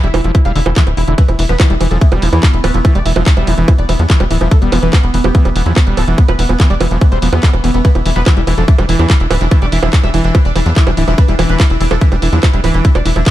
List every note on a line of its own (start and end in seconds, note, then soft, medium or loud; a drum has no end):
0.00 0.11 E1 medium
0.00 1.17 E3 medium
0.00 0.08 G3 loud
0.00 1.20 E4 medium
0.00 0.08 E5 medium
0.00 closed hi-hat medium
0.14 0.21 E1 loud
0.14 0.21 E3 medium
0.14 0.18 E4 medium
0.14 open hi-hat medium
0.14 high bongo medium
0.24 0.32 E1 medium
0.24 0.32 F3 medium
0.24 closed hi-hat medium
0.35 0.39 E4 medium
0.35 kick loud
0.35 closed hi-hat loud
0.35 high bongo soft
0.45 0.52 E1 medium
0.45 0.52 G3 medium
0.45 0.50 F5 medium
0.45 closed hi-hat medium
0.56 0.63 E1 loud
0.56 0.60 D3 loud
0.56 0.60 E4 medium
0.56 open hi-hat loud
0.66 0.73 E1 medium
0.66 0.70 E3 medium
0.66 closed hi-hat medium
0.66 high bongo medium
0.76 0.84 E3 loud
0.76 0.81 E4 medium
0.76 kick loud
0.76 clap loud
0.76 closed hi-hat medium
0.87 0.94 D1 medium
0.87 closed hi-hat medium
0.87 high bongo soft
0.97 1.05 E1 loud
0.97 1.02 E4 medium
0.97 open hi-hat medium
1.08 1.15 E1 medium
1.08 1.15 D3 medium
1.08 1.12 E4 medium
1.08 closed hi-hat medium
1.18 1.22 E3 medium
1.18 13.31 E3 medium
1.18 7.87 B3 medium
1.18 1.23 B4 loud
1.18 kick loud
1.18 closed hi-hat loud
1.18 ride medium
1.28 1.36 E1 medium
1.28 1.33 E4 medium
1.28 closed hi-hat medium
1.28 high bongo soft
1.39 1.46 E1 loud
1.39 1.43 E3 medium
1.39 1.43 E4 medium
1.39 open hi-hat loud
1.39 ride medium
1.49 1.57 E1 medium
1.49 1.54 F3 medium
1.49 1.56 B3 medium
1.49 1.54 B4 loud
1.49 closed hi-hat medium
1.60 1.70 E3 medium
1.60 1.66 B3 medium
1.60 1.64 E4 medium
1.60 kick loud
1.60 clap loud
1.60 closed hi-hat loud
1.60 ride medium
1.60 high bongo medium
1.70 1.77 E1 medium
1.70 1.75 G3 loud
1.70 1.75 E4 medium
1.70 closed hi-hat medium
1.81 1.88 E1 loud
1.81 1.88 E3 medium
1.81 1.85 E4 medium
1.81 open hi-hat medium
1.81 ride medium
1.81 high bongo soft
1.91 1.98 E1 medium
1.91 1.98 F3 medium
1.91 1.96 A4 medium
1.91 closed hi-hat medium
2.01 2.06 E4 medium
2.01 kick loud
2.01 closed hi-hat loud
2.01 ride medium
2.12 2.19 E1 medium
2.12 2.24 G3 medium
2.12 closed hi-hat medium
2.12 high bongo medium
2.22 2.30 E1 loud
2.22 2.29 E3 loud
2.22 2.27 E4 medium
2.22 open hi-hat loud
2.22 ride medium
2.33 2.40 E2 loud
2.33 2.43 E3 loud
2.33 2.37 E4 medium
2.33 closed hi-hat medium
2.33 high bongo soft
2.43 2.47 E3 medium
2.43 2.48 E4 medium
2.43 kick loud
2.43 clap loud
2.43 closed hi-hat medium
2.43 ride medium
2.54 2.61 E1 medium
2.54 2.58 E4 medium
2.54 closed hi-hat medium
2.64 2.71 D1 loud
2.64 2.68 E3 medium
2.64 3.06 A3 loud
2.64 2.68 B4 loud
2.64 open hi-hat medium
2.64 ride medium
2.64 high bongo medium
2.74 2.82 E1 loud
2.74 2.79 F3 medium
2.74 2.79 E4 medium
2.74 closed hi-hat medium
2.85 2.95 E3 medium
2.85 2.89 E4 medium
2.85 kick loud
2.85 closed hi-hat medium
2.85 ride medium
2.85 high bongo soft
2.95 3.03 E1 medium
2.95 2.99 G3 loud
2.95 3.00 D5 medium
2.95 closed hi-hat medium
3.06 3.13 E1 loud
3.06 3.13 E3 medium
3.06 3.10 E4 medium
3.06 open hi-hat loud
3.06 ride medium
3.16 3.23 E1 medium
3.16 3.23 F3 medium
3.16 3.21 E4 medium
3.16 closed hi-hat medium
3.16 high bongo medium
3.26 3.31 E4 medium
3.26 kick loud
3.26 clap loud
3.26 closed hi-hat loud
3.26 ride medium
3.37 3.44 E1 medium
3.37 3.49 G3 medium
3.37 3.41 E5 medium
3.37 closed hi-hat medium
3.37 high bongo soft
3.47 3.55 E1 loud
3.47 3.54 E3 loud
3.47 3.52 E4 medium
3.47 open hi-hat loud
3.47 ride medium
3.58 3.65 E1 medium
3.58 3.68 E3 loud
3.58 closed hi-hat medium
3.68 3.72 E3 medium
3.68 3.73 E4 medium
3.68 kick loud
3.68 closed hi-hat medium
3.68 ride medium
3.68 high bongo medium
3.79 3.86 E1 medium
3.79 3.83 D5 loud
3.79 closed hi-hat medium
3.89 3.96 E1 loud
3.89 3.93 E3 medium
3.89 3.93 E4 medium
3.89 open hi-hat loud
3.89 ride medium
3.89 high bongo soft
3.99 4.07 E2 medium
3.99 4.04 F3 medium
3.99 closed hi-hat medium
4.10 4.20 E3 medium
4.10 4.14 E4 medium
4.10 kick loud
4.10 clap loud
4.10 closed hi-hat medium
4.10 ride medium
4.20 4.28 E1 medium
4.20 4.25 G3 loud
4.20 closed hi-hat medium
4.20 high bongo medium
4.31 4.38 D1 loud
4.31 4.38 E3 medium
4.31 4.35 E4 medium
4.31 open hi-hat loud
4.31 ride medium
4.41 4.48 E1 medium
4.41 4.48 F3 medium
4.41 4.46 E4 medium
4.41 closed hi-hat medium
4.41 high bongo soft
4.51 4.56 A4 medium
4.51 kick loud
4.51 closed hi-hat loud
4.51 ride medium
4.62 4.69 E1 medium
4.62 4.74 G3 medium
4.62 4.66 B3 medium
4.62 closed hi-hat medium
4.72 4.80 E1 loud
4.72 4.79 E3 loud
4.72 4.77 B3 medium
4.72 open hi-hat loud
4.72 ride medium
4.72 high bongo medium
4.83 4.90 E1 medium
4.83 4.93 E3 loud
4.83 4.87 B4 loud
4.83 closed hi-hat medium
4.93 4.98 B3 medium
4.93 kick loud
4.93 clap loud
4.93 closed hi-hat medium
4.93 ride medium
4.93 high bongo soft
5.04 5.11 E1 medium
5.04 5.08 B3 medium
5.04 closed hi-hat soft
5.14 5.21 E1 loud
5.14 5.18 E3 medium
5.14 5.18 B3 medium
5.14 open hi-hat loud
5.14 ride medium
5.24 5.32 E1 medium
5.24 5.29 F3 medium
5.24 5.29 G4 medium
5.24 closed hi-hat medium
5.24 high bongo medium
5.35 5.45 E3 medium
5.35 5.39 B3 medium
5.35 kick loud
5.35 closed hi-hat medium
5.35 ride medium
5.45 5.53 E1 medium
5.45 5.49 G3 loud
5.45 closed hi-hat medium
5.45 high bongo soft
5.56 5.63 E1 loud
5.56 5.63 E3 medium
5.56 5.60 B3 medium
5.56 open hi-hat loud
5.56 ride medium
5.66 5.73 E2 medium
5.66 5.73 F3 medium
5.66 5.71 E4 medium
5.66 closed hi-hat medium
5.76 5.81 B3 medium
5.76 kick loud
5.76 clap loud
5.76 closed hi-hat medium
5.76 ride medium
5.76 high bongo medium
5.87 5.94 E1 medium
5.87 5.99 G3 medium
5.87 5.91 B3 medium
5.87 closed hi-hat soft
5.97 6.05 D1 loud
5.97 6.04 E3 loud
5.97 6.02 A4 loud
5.97 open hi-hat loud
5.97 ride medium
5.97 high bongo soft
6.08 6.15 E1 medium
6.08 6.18 E3 loud
6.08 6.12 B3 medium
6.08 closed hi-hat medium
6.18 6.23 B3 medium
6.18 kick loud
6.18 closed hi-hat medium
6.18 ride medium
6.29 6.36 E1 medium
6.29 6.33 B4 loud
6.29 closed hi-hat medium
6.29 high bongo medium
6.39 6.46 E1 loud
6.39 6.43 E3 medium
6.39 6.43 B3 medium
6.39 open hi-hat loud
6.39 ride medium
6.49 6.57 E1 medium
6.49 6.54 F3 medium
6.49 6.54 B3 medium
6.49 closed hi-hat soft
6.49 high bongo soft
6.60 6.70 E3 medium
6.60 6.64 B3 medium
6.60 kick loud
6.60 clap loud
6.60 closed hi-hat medium
6.60 ride medium
6.70 6.77 E1 medium
6.70 6.75 G3 loud
6.70 6.75 D5 medium
6.70 closed hi-hat soft
6.81 6.88 E1 loud
6.81 6.88 E3 medium
6.81 6.85 B3 medium
6.81 open hi-hat loud
6.81 ride medium
6.81 high bongo medium
6.91 6.98 E1 medium
6.91 6.98 F3 medium
6.91 closed hi-hat medium
7.01 7.06 B3 medium
7.01 kick loud
7.01 closed hi-hat medium
7.01 ride medium
7.01 high bongo soft
7.12 7.19 E1 medium
7.12 7.19 G3 medium
7.12 7.16 C5 medium
7.12 closed hi-hat soft
7.22 7.30 E1 loud
7.22 7.29 F3 medium
7.22 7.27 B3 medium
7.22 open hi-hat loud
7.22 ride medium
7.33 7.40 E2 medium
7.33 7.45 B3 medium
7.33 closed hi-hat medium
7.33 high bongo medium
7.43 7.50 G3 loud
7.43 7.48 B3 medium
7.43 kick loud
7.43 clap loud
7.43 closed hi-hat medium
7.43 ride medium
7.53 7.61 E1 medium
7.53 closed hi-hat soft
7.53 high bongo soft
7.64 7.71 E1 loud
7.64 7.71 E3 medium
7.64 7.68 B3 medium
7.64 open hi-hat medium
7.64 ride medium
7.74 7.82 E1 medium
7.74 7.79 B3 medium
7.74 closed hi-hat medium
7.85 7.89 E3 medium
7.85 13.31 D4 medium
7.85 7.89 B4 loud
7.85 kick loud
7.85 closed hi-hat medium
7.85 ride medium
7.95 8.02 E1 medium
7.95 8.00 E4 medium
7.95 closed hi-hat medium
7.95 high bongo soft
8.06 8.13 E1 loud
8.06 8.10 E3 medium
8.06 8.10 E4 medium
8.06 open hi-hat loud
8.06 ride medium
8.16 8.23 E1 medium
8.16 8.20 F3 medium
8.16 8.23 B3 medium
8.16 8.21 B4 loud
8.16 closed hi-hat medium
8.26 8.36 E3 medium
8.26 8.33 B3 medium
8.26 8.31 E4 medium
8.26 kick loud
8.26 clap loud
8.26 closed hi-hat medium
8.26 ride medium
8.26 high bongo medium
8.37 8.44 E1 medium
8.37 8.41 G3 loud
8.37 8.41 E4 medium
8.37 closed hi-hat soft
8.47 8.55 E1 loud
8.47 8.54 E3 medium
8.47 8.52 E4 medium
8.47 open hi-hat medium
8.47 ride medium
8.47 high bongo soft
8.58 8.65 E1 medium
8.58 8.65 F3 medium
8.58 8.62 A4 medium
8.58 closed hi-hat medium
8.68 8.73 E4 medium
8.68 kick loud
8.68 closed hi-hat medium
8.68 ride medium
8.78 8.86 E1 medium
8.78 8.86 G3 medium
8.78 closed hi-hat medium
8.78 high bongo medium
8.89 8.96 E1 loud
8.89 8.99 E3 loud
8.89 8.93 E4 medium
8.89 open hi-hat loud
8.89 ride medium
8.99 9.07 E2 medium
8.99 9.09 E3 loud
8.99 9.04 E4 medium
8.99 closed hi-hat medium
8.99 high bongo soft
9.10 9.14 E3 medium
9.10 9.14 E4 medium
9.10 kick loud
9.10 clap loud
9.10 closed hi-hat medium
9.10 ride medium
9.20 9.27 E1 medium
9.20 9.25 E4 medium
9.20 closed hi-hat medium
9.31 9.38 D1 loud
9.31 9.35 E3 medium
9.31 9.35 B4 loud
9.31 open hi-hat loud
9.31 ride medium
9.31 high bongo medium
9.41 9.48 E1 medium
9.41 9.45 F3 medium
9.41 9.46 E4 medium
9.41 closed hi-hat medium
9.51 9.61 E3 medium
9.51 9.58 A3 medium
9.51 9.56 E4 medium
9.51 kick loud
9.51 closed hi-hat medium
9.51 ride medium
9.51 high bongo soft
9.62 9.69 E1 medium
9.62 9.66 G3 loud
9.62 9.69 A3 medium
9.62 9.66 D5 medium
9.62 closed hi-hat medium
9.72 9.80 E1 loud
9.72 9.79 E3 medium
9.72 9.77 E4 medium
9.72 open hi-hat loud
9.72 ride medium
9.83 9.90 E1 medium
9.83 9.90 F3 medium
9.83 9.87 E4 medium
9.83 high bongo medium
9.93 9.98 E4 medium
9.93 kick loud
9.93 clap loud
9.93 closed hi-hat loud
9.93 ride medium
10.03 10.11 E1 medium
10.03 10.11 G3 medium
10.03 10.08 E5 medium
10.03 closed hi-hat soft
10.03 high bongo soft
10.14 10.21 E1 loud
10.14 10.24 E3 loud
10.14 10.18 E4 medium
10.14 open hi-hat medium
10.14 ride medium
10.24 10.32 E1 loud
10.24 10.34 E3 loud
10.24 closed hi-hat medium
10.35 10.39 E4 medium
10.35 kick loud
10.35 closed hi-hat medium
10.35 ride medium
10.35 high bongo medium
10.45 10.52 E1 medium
10.45 10.50 D5 medium
10.45 closed hi-hat medium
10.56 10.63 E1 loud
10.56 10.60 E3 medium
10.56 10.60 E4 medium
10.56 open hi-hat loud
10.56 ride medium
10.56 high bongo soft
10.66 10.73 E2 medium
10.66 10.70 F3 medium
10.66 closed hi-hat medium
10.76 10.86 E3 medium
10.76 10.81 E4 medium
10.76 kick loud
10.76 clap loud
10.76 closed hi-hat medium
10.76 ride medium
10.87 10.94 E1 medium
10.87 10.91 G3 loud
10.87 closed hi-hat medium
10.87 high bongo medium
10.97 11.05 D1 loud
10.97 11.04 E3 medium
10.97 11.02 E4 medium
10.97 open hi-hat medium
10.97 ride medium
11.08 11.15 E1 medium
11.08 11.15 F3 medium
11.08 11.12 E4 medium
11.08 closed hi-hat medium
11.08 high bongo soft
11.18 11.23 B4 loud
11.18 kick loud
11.18 closed hi-hat loud
11.18 ride medium
11.28 11.36 E1 medium
11.28 11.36 G3 medium
11.28 11.33 E4 medium
11.28 closed hi-hat medium
11.39 11.46 E1 loud
11.39 11.49 E3 loud
11.39 11.43 E4 medium
11.39 open hi-hat loud
11.39 ride medium
11.39 high bongo medium
11.49 11.57 E1 medium
11.49 11.59 E3 loud
11.49 11.54 B4 loud
11.49 closed hi-hat medium
11.60 11.64 E4 medium
11.60 kick loud
11.60 clap loud
11.60 closed hi-hat loud
11.60 ride medium
11.60 high bongo soft
11.70 11.78 E1 medium
11.70 11.75 E4 medium
11.70 closed hi-hat medium
11.81 11.88 E1 loud
11.81 11.85 E3 medium
11.81 11.85 E4 medium
11.81 open hi-hat medium
11.81 ride medium
11.91 11.98 E1 medium
11.91 11.95 F3 medium
11.91 11.96 A4 medium
11.91 closed hi-hat medium
11.91 high bongo medium
12.01 12.11 E3 medium
12.01 12.06 E4 medium
12.01 kick loud
12.01 closed hi-hat medium
12.01 ride medium
12.12 12.19 E1 medium
12.12 12.16 G3 loud
12.12 closed hi-hat medium
12.12 high bongo soft
12.22 12.30 E1 loud
12.22 12.29 E3 medium
12.22 12.27 E4 medium
12.22 open hi-hat loud
12.22 ride medium
12.33 12.40 E2 loud
12.33 12.40 F3 medium
12.33 12.37 E4 medium
12.33 closed hi-hat medium
12.43 12.48 E4 medium
12.43 kick loud
12.43 clap loud
12.43 closed hi-hat medium
12.43 ride medium
12.43 high bongo medium
12.53 12.61 E1 medium
12.53 12.61 G3 medium
12.53 12.58 E4 medium
12.53 closed hi-hat medium
12.64 12.71 D1 loud
12.64 12.74 E3 loud
12.64 12.68 B4 medium
12.64 open hi-hat medium
12.64 ride medium
12.64 high bongo soft
12.74 12.82 E1 medium
12.74 12.84 E3 loud
12.74 12.79 E4 medium
12.74 closed hi-hat medium
12.85 12.89 E4 medium
12.85 kick loud
12.85 closed hi-hat loud
12.85 ride medium
12.95 13.03 E1 medium
12.95 13.00 D5 loud
12.95 closed hi-hat medium
12.95 high bongo medium
13.05 13.13 E1 loud
13.05 13.10 E3 medium
13.05 13.10 E4 medium
13.05 open hi-hat loud
13.05 ride medium
13.16 13.23 E1 medium
13.16 13.20 F3 medium
13.16 13.21 E4 medium
13.16 closed hi-hat medium
13.16 high bongo soft
13.26 13.31 E3 medium
13.26 13.31 E4 medium
13.26 kick loud
13.26 clap loud
13.26 closed hi-hat loud
13.26 ride medium